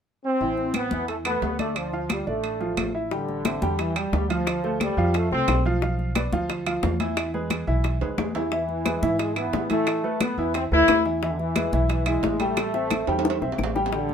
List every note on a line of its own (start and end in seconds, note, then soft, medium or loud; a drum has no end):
0.24 0.71 C4 loud
0.40 0.88 A1 medium
0.40 0.68 E3 medium
0.40 0.69 E4 medium
0.40 high conga soft
0.57 high conga soft
0.74 1.08 B3 loud
0.74 0.89 C4 medium
0.74 0.89 C5 medium
0.74 high conga medium
0.74 high timbale medium
0.74 low timbale soft
0.74 claves medium
0.91 1.39 E2 medium
0.91 1.20 E3 medium
0.91 1.20 E4 medium
0.91 high conga medium
1.08 1.16 A3 medium
1.08 high conga soft
1.08 high timbale medium
1.25 1.54 A3 medium
1.25 1.57 B3 medium
1.25 1.54 A4 medium
1.25 high conga soft
1.25 high timbale medium
1.25 claves medium
1.42 2.21 D2 medium
1.42 high conga medium
1.42 low timbale medium
1.59 1.75 A3 medium
1.59 1.87 D4 medium
1.59 1.87 D5 medium
1.59 high conga medium
1.59 high timbale medium
1.76 2.10 F3 medium
1.76 high conga soft
1.76 high timbale medium
1.76 claves medium
1.93 2.21 F4 medium
1.93 2.21 F5 medium
1.93 high conga soft
2.09 2.27 G3 medium
2.09 high conga medium
2.09 high timbale medium
2.09 low timbale medium
2.09 claves medium
2.27 2.74 A1 medium
2.27 2.91 A3 medium
2.27 2.55 D4 medium
2.27 2.55 D5 medium
2.27 high conga soft
2.44 high conga soft
2.44 high timbale medium
2.60 2.88 F3 medium
2.60 2.88 F4 medium
2.60 high conga soft
2.77 3.56 A1 medium
2.77 high conga medium
2.77 high timbale medium
2.77 low timbale medium
2.77 claves medium
2.94 3.08 E4 medium
2.94 3.08 E5 medium
3.11 3.75 D3 medium
3.11 3.39 G3 medium
3.11 3.39 G4 medium
3.11 3.39 G5 medium
3.11 high bongo medium
3.11 high conga soft
3.29 high bongo soft
3.29 high conga soft
3.45 3.59 C4 medium
3.45 3.59 C5 medium
3.45 3.59 E5 medium
3.45 high bongo medium
3.45 high conga medium
3.45 high timbale medium
3.45 low timbale medium
3.45 claves medium
3.62 4.09 E2 medium
3.62 3.90 G3 medium
3.62 3.90 G4 medium
3.62 3.90 G5 medium
3.62 high conga medium
3.79 3.96 E3 medium
3.79 high bongo medium
3.79 high conga soft
3.79 high timbale medium
3.96 4.23 G3 medium
3.96 4.30 G3 medium
3.96 4.24 G4 medium
3.96 4.24 G5 medium
3.96 high bongo soft
3.96 high conga soft
3.96 high timbale medium
3.96 claves medium
4.12 4.91 D2 medium
4.12 high bongo medium
4.12 low bongo medium
4.12 high conga medium
4.12 low timbale medium
4.30 4.58 F3 medium
4.30 4.81 F3 loud
4.30 4.58 F4 medium
4.30 4.58 F5 medium
4.30 high bongo soft
4.30 high conga medium
4.30 high timbale medium
4.47 high bongo medium
4.47 high conga soft
4.47 high timbale medium
4.47 claves medium
4.64 4.92 A3 medium
4.64 4.92 A4 medium
4.64 4.92 C5 medium
4.64 high bongo soft
4.64 high conga soft
4.80 5.12 G3 medium
4.80 high bongo medium
4.80 high conga loud
4.80 high timbale medium
4.80 low timbale medium
4.80 claves medium
4.97 5.29 F2 medium
4.97 5.25 F3 medium
4.97 5.25 F4 medium
4.97 5.26 F5 medium
4.97 high conga soft
5.14 5.32 A3 medium
5.14 high bongo medium
5.14 high conga soft
5.14 high timbale medium
5.31 5.47 C2 medium
5.31 5.59 A3 medium
5.31 5.63 C4 loud
5.31 5.59 A4 medium
5.31 5.60 C5 medium
5.31 high conga soft
5.48 6.27 B1 medium
5.48 high bongo medium
5.48 low bongo medium
5.48 high conga medium
5.48 high timbale medium
5.48 low timbale medium
5.48 claves medium
5.65 5.79 F3 medium
5.65 5.79 F4 medium
5.65 5.80 F5 medium
5.65 high bongo soft
5.82 6.10 F3 medium
5.82 6.10 F4 medium
5.82 6.10 F5 medium
5.82 high bongo medium
5.82 high conga soft
5.99 high bongo soft
5.99 high conga soft
6.15 6.30 B3 medium
6.15 6.30 B4 medium
6.15 6.30 D5 medium
6.15 high bongo medium
6.15 high conga medium
6.15 high timbale medium
6.15 low timbale medium
6.15 claves medium
6.32 6.79 D2 medium
6.32 6.60 F3 medium
6.32 6.61 F4 medium
6.32 6.61 F5 medium
6.32 high conga medium
6.49 high bongo medium
6.49 high conga soft
6.49 high timbale medium
6.66 6.94 F3 medium
6.66 6.94 F4 medium
6.66 6.94 F5 medium
6.66 high bongo soft
6.66 high conga soft
6.66 high timbale medium
6.66 claves medium
6.83 7.62 E2 medium
6.83 high bongo medium
6.83 low bongo medium
6.83 high conga medium
6.83 low timbale medium
7.00 7.28 E3 loud
7.00 7.28 E4 medium
7.00 7.28 E5 medium
7.00 high bongo soft
7.00 high conga medium
7.00 high timbale medium
7.17 high bongo medium
7.17 high timbale medium
7.17 claves medium
7.34 7.61 G#3 medium
7.34 7.62 G#4 medium
7.34 7.62 B4 medium
7.34 high bongo soft
7.34 high conga soft
7.50 high bongo medium
7.50 high conga medium
7.50 high timbale medium
7.50 low timbale medium
7.50 claves medium
7.67 7.99 B1 medium
7.67 7.95 E3 medium
7.67 7.95 E4 medium
7.67 7.95 E5 medium
7.67 high conga soft
7.84 high bongo medium
7.84 high conga soft
7.84 high timbale medium
8.01 8.17 D2 medium
8.01 8.29 G#3 medium
8.01 8.29 G#4 medium
8.01 8.29 B4 medium
8.01 high conga soft
8.01 high timbale medium
8.18 8.97 E2 medium
8.18 high bongo medium
8.18 low bongo medium
8.18 high conga medium
8.18 low timbale medium
8.18 claves medium
8.35 8.49 E3 medium
8.35 8.49 E4 medium
8.35 8.49 E5 medium
8.35 high bongo soft
8.35 high conga medium
8.35 low timbale medium
8.52 8.79 E3 medium
8.52 9.16 E3 medium
8.52 8.80 E4 medium
8.52 8.80 E5 medium
8.52 high bongo medium
8.52 high conga soft
8.69 high bongo soft
8.69 high conga soft
8.85 8.99 G#3 medium
8.85 8.99 G#4 medium
8.85 9.00 B4 medium
8.85 high bongo medium
8.85 high conga medium
8.85 high timbale medium
8.85 low timbale medium
8.85 claves medium
9.02 9.50 G#2 medium
9.02 9.30 E3 medium
9.02 9.30 E4 medium
9.02 9.30 E5 medium
9.02 high conga medium
9.19 9.35 G#3 medium
9.19 high bongo medium
9.19 high conga soft
9.19 high timbale medium
9.36 9.64 E3 medium
9.36 9.70 B3 loud
9.36 9.64 E4 medium
9.36 9.64 E5 medium
9.36 high bongo soft
9.36 high conga soft
9.36 high timbale medium
9.36 claves medium
9.53 10.32 A2 medium
9.53 high bongo medium
9.53 low bongo medium
9.53 high conga medium
9.53 low timbale medium
9.70 9.98 E3 medium
9.70 10.17 A3 medium
9.70 9.98 E4 medium
9.70 9.98 E5 medium
9.70 high bongo soft
9.70 high conga medium
9.70 high timbale medium
9.87 high bongo medium
9.87 high conga soft
9.87 high timbale medium
9.87 claves medium
10.04 10.31 A3 medium
10.04 10.32 A4 medium
10.04 10.32 B4 medium
10.04 high bongo soft
10.04 high conga soft
10.21 10.55 B3 loud
10.21 high bongo medium
10.21 high conga medium
10.21 high timbale medium
10.21 low timbale medium
10.21 claves medium
10.38 10.69 E2 medium
10.38 10.65 E3 medium
10.38 10.66 E4 medium
10.38 10.66 E5 medium
10.38 high conga soft
10.54 10.63 C4 medium
10.54 high bongo medium
10.54 high conga soft
10.54 high timbale medium
10.71 10.87 D2 medium
10.71 10.99 A3 medium
10.71 11.03 E4 loud
10.71 10.99 A4 medium
10.71 11.00 B4 medium
10.71 high conga soft
10.88 11.67 E2 medium
10.88 high bongo medium
10.88 low bongo medium
10.88 high conga medium
10.88 high timbale medium
10.88 low timbale medium
10.88 claves medium
11.05 11.19 E3 medium
11.05 11.19 E4 medium
11.05 11.19 E5 medium
11.05 high bongo soft
11.22 11.50 E3 medium
11.22 11.29 E3 medium
11.22 11.50 E4 medium
11.22 11.50 E5 medium
11.22 high bongo medium
11.22 high conga soft
11.30 11.36 D3 medium
11.37 11.89 E3 medium
11.37 high bongo soft
11.37 high conga soft
11.56 11.70 G#3 medium
11.56 11.70 G#4 medium
11.56 11.70 B4 medium
11.56 high bongo medium
11.56 high conga loud
11.56 high timbale medium
11.56 low timbale medium
11.56 claves medium
11.72 12.20 B1 medium
11.72 12.01 E3 medium
11.72 12.01 E4 medium
11.72 12.01 E5 medium
11.72 high conga medium
11.89 12.05 E3 medium
11.89 high bongo medium
11.89 high conga soft
11.89 high timbale medium
12.06 12.34 E3 medium
12.06 12.40 G#3 medium
12.06 12.34 E4 medium
12.06 12.34 E5 medium
12.06 high bongo soft
12.06 high conga soft
12.06 high timbale medium
12.06 claves medium
12.23 13.02 A1 medium
12.23 high bongo medium
12.23 low bongo medium
12.23 high conga medium
12.23 low timbale medium
12.40 12.68 G3 medium
12.40 13.59 A3 loud
12.40 12.68 G4 medium
12.40 12.68 G5 medium
12.40 high bongo soft
12.40 high conga medium
12.40 high timbale medium
12.57 high bongo loud
12.57 high conga soft
12.57 high timbale medium
12.57 claves medium
12.74 13.01 C4 medium
12.74 13.02 C5 medium
12.74 13.02 E5 medium
12.74 high bongo medium
12.74 high conga soft
12.90 low bongo medium
12.90 high conga medium
12.90 high timbale medium
12.90 low timbale medium
12.90 claves medium
13.07 13.39 E2 medium
13.07 13.35 G3 medium
13.07 13.36 G4 medium
13.07 13.36 G5 medium
13.07 high conga soft
13.07 high timbale medium
13.19 high timbale medium
13.25 low bongo loud
13.25 high conga soft
13.30 high timbale medium
13.41 13.57 B1 medium
13.41 13.69 C4 medium
13.41 13.69 C5 medium
13.41 13.69 E5 medium
13.41 low bongo medium
13.41 high conga soft
13.52 low timbale medium
13.58 14.14 A1 medium
13.58 low bongo medium
13.58 high conga medium
13.58 claves medium
13.64 low timbale loud
13.75 13.89 G3 medium
13.75 13.89 G4 medium
13.75 13.89 G5 medium
13.75 low bongo medium
13.86 low timbale medium
13.92 14.14 D3 medium
13.92 14.14 G3 medium
13.92 14.14 G4 medium
13.92 14.14 G5 medium
13.92 high bongo medium
13.92 high conga soft
14.09 high bongo soft
14.09 high conga soft